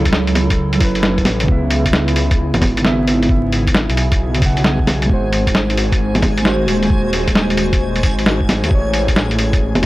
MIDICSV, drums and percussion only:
0, 0, Header, 1, 2, 480
1, 0, Start_track
1, 0, Key_signature, 4, "minor"
1, 0, Tempo, 451128
1, 1581, Time_signature, 4, 2, 24, 8
1, 10490, End_track
2, 0, Start_track
2, 0, Title_t, "Drums"
2, 56, Note_on_c, 9, 36, 61
2, 59, Note_on_c, 9, 42, 56
2, 135, Note_on_c, 9, 38, 100
2, 162, Note_off_c, 9, 36, 0
2, 165, Note_off_c, 9, 42, 0
2, 241, Note_off_c, 9, 38, 0
2, 292, Note_on_c, 9, 42, 45
2, 376, Note_on_c, 9, 46, 79
2, 376, Note_on_c, 9, 61, 39
2, 398, Note_off_c, 9, 42, 0
2, 483, Note_off_c, 9, 46, 0
2, 483, Note_off_c, 9, 61, 0
2, 534, Note_on_c, 9, 36, 101
2, 535, Note_on_c, 9, 42, 57
2, 641, Note_off_c, 9, 36, 0
2, 642, Note_off_c, 9, 42, 0
2, 774, Note_on_c, 9, 42, 48
2, 856, Note_on_c, 9, 46, 74
2, 857, Note_on_c, 9, 36, 105
2, 880, Note_off_c, 9, 42, 0
2, 962, Note_off_c, 9, 46, 0
2, 964, Note_off_c, 9, 36, 0
2, 1013, Note_on_c, 9, 46, 45
2, 1095, Note_on_c, 9, 38, 100
2, 1119, Note_off_c, 9, 46, 0
2, 1201, Note_off_c, 9, 38, 0
2, 1254, Note_on_c, 9, 42, 32
2, 1255, Note_on_c, 9, 36, 59
2, 1332, Note_on_c, 9, 38, 59
2, 1332, Note_on_c, 9, 46, 75
2, 1332, Note_on_c, 9, 61, 54
2, 1361, Note_off_c, 9, 36, 0
2, 1361, Note_off_c, 9, 42, 0
2, 1438, Note_off_c, 9, 38, 0
2, 1438, Note_off_c, 9, 46, 0
2, 1438, Note_off_c, 9, 61, 0
2, 1491, Note_on_c, 9, 42, 56
2, 1578, Note_on_c, 9, 36, 121
2, 1597, Note_off_c, 9, 42, 0
2, 1685, Note_off_c, 9, 36, 0
2, 1815, Note_on_c, 9, 46, 76
2, 1921, Note_off_c, 9, 46, 0
2, 1976, Note_on_c, 9, 36, 63
2, 1976, Note_on_c, 9, 42, 60
2, 2056, Note_on_c, 9, 38, 107
2, 2082, Note_off_c, 9, 36, 0
2, 2082, Note_off_c, 9, 42, 0
2, 2162, Note_off_c, 9, 38, 0
2, 2213, Note_on_c, 9, 42, 48
2, 2298, Note_on_c, 9, 46, 75
2, 2319, Note_off_c, 9, 42, 0
2, 2404, Note_off_c, 9, 46, 0
2, 2458, Note_on_c, 9, 36, 106
2, 2458, Note_on_c, 9, 42, 59
2, 2564, Note_off_c, 9, 36, 0
2, 2565, Note_off_c, 9, 42, 0
2, 2701, Note_on_c, 9, 42, 49
2, 2701, Note_on_c, 9, 61, 66
2, 2780, Note_on_c, 9, 36, 110
2, 2784, Note_off_c, 9, 61, 0
2, 2784, Note_on_c, 9, 46, 71
2, 2784, Note_on_c, 9, 61, 66
2, 2807, Note_off_c, 9, 42, 0
2, 2886, Note_off_c, 9, 36, 0
2, 2890, Note_off_c, 9, 46, 0
2, 2890, Note_off_c, 9, 61, 0
2, 2949, Note_on_c, 9, 42, 61
2, 3027, Note_on_c, 9, 38, 110
2, 3056, Note_off_c, 9, 42, 0
2, 3134, Note_off_c, 9, 38, 0
2, 3272, Note_on_c, 9, 46, 74
2, 3378, Note_off_c, 9, 46, 0
2, 3432, Note_on_c, 9, 46, 45
2, 3504, Note_on_c, 9, 36, 122
2, 3538, Note_off_c, 9, 46, 0
2, 3610, Note_off_c, 9, 36, 0
2, 3751, Note_on_c, 9, 46, 69
2, 3857, Note_off_c, 9, 46, 0
2, 3903, Note_on_c, 9, 36, 66
2, 3910, Note_on_c, 9, 42, 58
2, 3985, Note_on_c, 9, 38, 111
2, 4009, Note_off_c, 9, 36, 0
2, 4016, Note_off_c, 9, 42, 0
2, 4092, Note_off_c, 9, 38, 0
2, 4145, Note_on_c, 9, 42, 47
2, 4227, Note_on_c, 9, 46, 73
2, 4251, Note_off_c, 9, 42, 0
2, 4333, Note_off_c, 9, 46, 0
2, 4380, Note_on_c, 9, 36, 107
2, 4380, Note_on_c, 9, 42, 58
2, 4487, Note_off_c, 9, 36, 0
2, 4487, Note_off_c, 9, 42, 0
2, 4623, Note_on_c, 9, 42, 49
2, 4701, Note_on_c, 9, 46, 71
2, 4702, Note_on_c, 9, 36, 115
2, 4729, Note_off_c, 9, 42, 0
2, 4808, Note_off_c, 9, 36, 0
2, 4808, Note_off_c, 9, 46, 0
2, 4861, Note_on_c, 9, 46, 42
2, 4941, Note_on_c, 9, 38, 106
2, 4967, Note_off_c, 9, 46, 0
2, 5047, Note_off_c, 9, 38, 0
2, 5100, Note_on_c, 9, 36, 65
2, 5185, Note_on_c, 9, 38, 64
2, 5185, Note_on_c, 9, 46, 73
2, 5185, Note_on_c, 9, 61, 53
2, 5206, Note_off_c, 9, 36, 0
2, 5291, Note_off_c, 9, 38, 0
2, 5291, Note_off_c, 9, 46, 0
2, 5291, Note_off_c, 9, 61, 0
2, 5343, Note_on_c, 9, 42, 58
2, 5422, Note_on_c, 9, 36, 127
2, 5449, Note_off_c, 9, 42, 0
2, 5528, Note_off_c, 9, 36, 0
2, 5667, Note_on_c, 9, 46, 71
2, 5773, Note_off_c, 9, 46, 0
2, 5820, Note_on_c, 9, 36, 66
2, 5823, Note_on_c, 9, 42, 59
2, 5903, Note_on_c, 9, 38, 107
2, 5926, Note_off_c, 9, 36, 0
2, 5929, Note_off_c, 9, 42, 0
2, 6009, Note_off_c, 9, 38, 0
2, 6064, Note_on_c, 9, 42, 45
2, 6144, Note_on_c, 9, 46, 71
2, 6170, Note_off_c, 9, 42, 0
2, 6251, Note_off_c, 9, 46, 0
2, 6299, Note_on_c, 9, 36, 108
2, 6304, Note_on_c, 9, 42, 59
2, 6405, Note_off_c, 9, 36, 0
2, 6410, Note_off_c, 9, 42, 0
2, 6543, Note_on_c, 9, 42, 47
2, 6543, Note_on_c, 9, 61, 62
2, 6621, Note_on_c, 9, 36, 111
2, 6623, Note_off_c, 9, 61, 0
2, 6623, Note_on_c, 9, 46, 69
2, 6623, Note_on_c, 9, 61, 63
2, 6649, Note_off_c, 9, 42, 0
2, 6727, Note_off_c, 9, 36, 0
2, 6730, Note_off_c, 9, 46, 0
2, 6730, Note_off_c, 9, 61, 0
2, 6783, Note_on_c, 9, 42, 59
2, 6864, Note_on_c, 9, 38, 109
2, 6889, Note_off_c, 9, 42, 0
2, 6970, Note_off_c, 9, 38, 0
2, 7107, Note_on_c, 9, 46, 70
2, 7214, Note_off_c, 9, 46, 0
2, 7263, Note_on_c, 9, 46, 42
2, 7343, Note_on_c, 9, 36, 123
2, 7369, Note_off_c, 9, 46, 0
2, 7449, Note_off_c, 9, 36, 0
2, 7586, Note_on_c, 9, 46, 72
2, 7693, Note_off_c, 9, 46, 0
2, 7742, Note_on_c, 9, 36, 66
2, 7742, Note_on_c, 9, 42, 56
2, 7825, Note_on_c, 9, 38, 106
2, 7848, Note_off_c, 9, 42, 0
2, 7849, Note_off_c, 9, 36, 0
2, 7932, Note_off_c, 9, 38, 0
2, 7983, Note_on_c, 9, 42, 44
2, 8059, Note_on_c, 9, 46, 73
2, 8089, Note_off_c, 9, 42, 0
2, 8165, Note_off_c, 9, 46, 0
2, 8223, Note_on_c, 9, 36, 108
2, 8223, Note_on_c, 9, 42, 56
2, 8329, Note_off_c, 9, 42, 0
2, 8330, Note_off_c, 9, 36, 0
2, 8465, Note_on_c, 9, 42, 45
2, 8545, Note_on_c, 9, 36, 114
2, 8547, Note_on_c, 9, 46, 73
2, 8572, Note_off_c, 9, 42, 0
2, 8652, Note_off_c, 9, 36, 0
2, 8653, Note_off_c, 9, 46, 0
2, 8710, Note_on_c, 9, 46, 42
2, 8791, Note_on_c, 9, 38, 106
2, 8816, Note_off_c, 9, 46, 0
2, 8897, Note_off_c, 9, 38, 0
2, 8943, Note_on_c, 9, 36, 65
2, 9033, Note_on_c, 9, 38, 64
2, 9033, Note_on_c, 9, 46, 74
2, 9033, Note_on_c, 9, 61, 51
2, 9050, Note_off_c, 9, 36, 0
2, 9139, Note_off_c, 9, 38, 0
2, 9139, Note_off_c, 9, 46, 0
2, 9139, Note_off_c, 9, 61, 0
2, 9190, Note_on_c, 9, 42, 56
2, 9266, Note_on_c, 9, 36, 124
2, 9297, Note_off_c, 9, 42, 0
2, 9373, Note_off_c, 9, 36, 0
2, 9507, Note_on_c, 9, 46, 74
2, 9614, Note_off_c, 9, 46, 0
2, 9663, Note_on_c, 9, 36, 62
2, 9666, Note_on_c, 9, 42, 53
2, 9749, Note_on_c, 9, 38, 108
2, 9769, Note_off_c, 9, 36, 0
2, 9772, Note_off_c, 9, 42, 0
2, 9856, Note_off_c, 9, 38, 0
2, 9906, Note_on_c, 9, 42, 43
2, 9986, Note_on_c, 9, 46, 77
2, 10013, Note_off_c, 9, 42, 0
2, 10093, Note_off_c, 9, 46, 0
2, 10142, Note_on_c, 9, 36, 105
2, 10143, Note_on_c, 9, 42, 54
2, 10248, Note_off_c, 9, 36, 0
2, 10249, Note_off_c, 9, 42, 0
2, 10377, Note_on_c, 9, 42, 44
2, 10377, Note_on_c, 9, 61, 60
2, 10456, Note_off_c, 9, 61, 0
2, 10456, Note_on_c, 9, 46, 73
2, 10456, Note_on_c, 9, 61, 62
2, 10483, Note_off_c, 9, 42, 0
2, 10490, Note_off_c, 9, 46, 0
2, 10490, Note_off_c, 9, 61, 0
2, 10490, End_track
0, 0, End_of_file